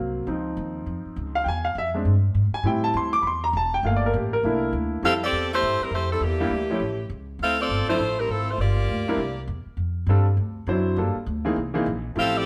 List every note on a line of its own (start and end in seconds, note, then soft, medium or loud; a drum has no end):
0.00 0.26 C2 medium
0.00 0.24 F#3 soft
0.00 0.24 A#3 soft
0.00 0.25 C4 soft
0.00 0.25 F4 medium
0.27 0.56 C#2 medium
0.27 1.42 F3 medium
0.27 1.42 C4 soft
0.27 1.43 D#4 medium
0.57 0.86 D#2 loud
0.86 1.04 F2 medium
1.05 muted upright bass stroke soft
1.16 1.45 C#2 medium
1.35 1.46 F5 medium
1.44 1.75 E2 medium
1.44 1.46 G5 medium
1.48 1.65 G#5 medium
1.65 1.76 F5 medium
1.75 2.04 F2 medium
1.75 1.89 E5 medium
1.94 2.12 G#3 soft
1.94 2.13 C4 soft
1.94 2.13 D4 medium
2.05 2.34 G2 medium
2.35 2.51 G#2 medium
2.52 2.65 G#5 medium
2.52 muted upright bass stroke soft
2.63 2.93 A2 loud
2.63 3.10 G3 medium
2.63 3.11 C4 soft
2.63 3.11 E4 medium
2.63 2.84 G5 medium
2.84 2.95 A5 medium
2.94 3.22 D2 loud
2.94 3.14 C6 medium
3.13 3.24 D6 loud
3.22 3.52 E2 loud
3.22 3.24 B5 medium
3.27 3.44 C6 medium
3.44 3.54 A#5 medium
3.53 3.83 E1 loud
3.53 3.73 A5 medium
3.74 3.84 G5 medium
3.83 4.12 G1 medium
3.83 4.30 A3 medium
3.83 4.30 A#3 medium
3.83 4.30 F4 medium
3.83 3.95 F5 medium
3.96 4.05 D5 medium
4.06 4.15 A#4 medium
4.13 4.42 A1 loud
4.13 4.33 G4 soft
4.33 4.71 A#4 medium
4.43 4.72 C2 medium
4.43 5.00 A3 medium
4.43 5.00 A#3 soft
4.43 5.01 D4 soft
4.43 5.01 E4 medium
4.73 5.02 D2 loud
5.02 5.31 F2 medium
5.02 5.19 G3 medium
5.02 5.20 C4 medium
5.02 5.13 C4 loud
5.02 5.20 E4 medium
5.02 5.20 F4 medium
5.02 5.13 G4 loud
5.02 5.13 A4 loud
5.02 5.20 A4 medium
5.02 5.13 F5 loud
5.23 5.50 C4 medium
5.23 5.50 G4 medium
5.23 5.50 A4 medium
5.23 5.50 D5 loud
5.32 5.61 E2 loud
5.54 5.80 A3 medium
5.54 5.80 E4 medium
5.54 5.80 G4 medium
5.54 5.80 C5 loud
5.62 5.79 G2 medium
5.80 5.93 G3 medium
5.80 5.93 C4 medium
5.80 5.93 E4 medium
5.80 5.93 A#4 medium
5.80 muted upright bass stroke soft
5.91 6.20 F2 loud
5.91 6.10 A3 medium
5.91 6.10 E4 medium
5.91 6.10 G4 medium
5.91 6.10 C5 loud
6.12 6.22 G3 medium
6.12 6.22 C4 medium
6.12 6.22 E4 medium
6.12 6.22 A4 medium
6.21 6.50 E2 medium
6.21 7.12 E3 medium
6.21 6.82 A#3 medium
6.21 6.82 D4 medium
6.21 7.12 G4 medium
6.40 6.50 G3 medium
6.40 6.50 A#3 medium
6.40 6.50 D4 medium
6.40 6.51 E4 medium
6.40 6.51 G4 medium
6.50 6.79 D2 medium
6.70 6.80 F3 medium
6.70 6.80 A3 medium
6.70 6.80 C#4 medium
6.70 6.81 E4 medium
6.70 6.81 G4 medium
6.80 7.09 A1 medium
7.09 7.38 C#2 medium
7.39 7.68 D2 medium
7.39 7.59 C4 loud
7.39 7.59 E4 loud
7.39 7.59 A4 loud
7.39 7.59 F5 loud
7.61 7.87 C4 loud
7.61 7.87 F4 medium
7.61 7.87 A4 loud
7.61 7.88 D5 loud
7.69 7.86 G1 loud
7.88 7.98 F3 medium
7.88 8.17 A3 medium
7.88 7.99 C4 medium
7.88 7.99 D4 medium
7.88 7.99 E4 medium
7.88 8.17 E4 medium
7.88 8.17 F4 medium
7.88 7.99 A4 medium
7.88 8.17 C5 loud
7.98 8.28 A1 medium
8.19 8.30 G3 medium
8.19 8.30 C4 medium
8.19 8.30 E4 medium
8.19 8.30 A#4 medium
8.28 8.57 G#1 loud
8.28 8.49 F3 medium
8.28 8.49 C4 medium
8.28 8.49 E4 medium
8.28 8.49 A4 medium
8.50 8.60 A3 medium
8.50 8.60 E4 medium
8.50 8.59 F4 medium
8.50 8.60 C5 medium
8.58 8.87 G1 medium
8.58 9.45 A#3 medium
8.58 9.15 F4 medium
8.58 9.45 G4 medium
8.58 9.45 D5 loud
8.88 9.17 D2 loud
9.08 9.18 G3 medium
9.08 9.18 C4 medium
9.08 9.18 D4 medium
9.08 9.18 E4 medium
9.08 9.19 A#4 medium
9.17 9.47 C2 medium
9.47 9.65 E2 loud
9.66 muted upright bass stroke soft
9.77 10.06 F2 medium
10.07 10.36 G2 loud
10.07 10.25 G3 medium
10.07 10.25 C4 medium
10.07 10.25 D4 medium
10.07 10.25 F4 medium
10.07 10.25 A4 medium
10.37 10.66 D2 medium
10.67 10.96 F#2 loud
10.67 10.97 F#3 medium
10.67 10.97 C4 medium
10.67 10.96 D4 medium
10.67 10.98 E4 medium
10.67 10.98 C5 medium
10.96 11.14 G2 medium
10.96 11.13 G3 medium
10.96 11.14 A#3 medium
10.96 11.14 D4 medium
10.96 11.14 F4 medium
10.96 11.14 A4 medium
11.15 muted upright bass stroke soft
11.26 11.55 D2 loud
11.45 11.55 E3 medium
11.45 11.55 A#3 medium
11.45 11.55 C4 medium
11.45 11.56 D#4 medium
11.45 11.56 G#4 medium
11.56 11.85 C2 medium
11.74 11.85 E3 medium
11.74 11.85 A#3 medium
11.74 11.85 C4 medium
11.74 11.85 D#4 medium
11.74 11.85 G#4 medium
11.86 12.15 A#1 loud
12.16 12.44 A1 medium
12.16 12.46 F3 medium
12.16 12.46 A3 medium
12.16 12.46 C4 medium
12.16 12.35 C4 loud
12.16 12.46 E4 medium
12.16 12.46 G4 medium
12.16 12.35 G4 loud
12.16 12.35 A4 loud
12.16 12.35 F5 loud
12.37 12.46 C4 medium
12.37 12.46 G4 medium
12.37 12.46 A4 medium
12.37 12.46 D5 loud